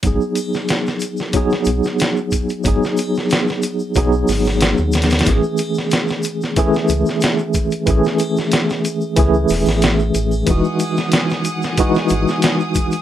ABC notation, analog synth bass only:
X:1
M:4/4
L:1/16
Q:"Swing 16ths" 1/4=92
K:G#phr
V:1 name="Analog synth bass" clef=bass
G,,, z8 z B,,, z4 z | G,,, z6 z B,,,2 G,,,3 D,,3 | A,,, z8 z C,, z4 z | A,,, z6 z C,,2 E,,, A,,,3 A,,,2 |
E,,, z8 z G,,, z4 z |]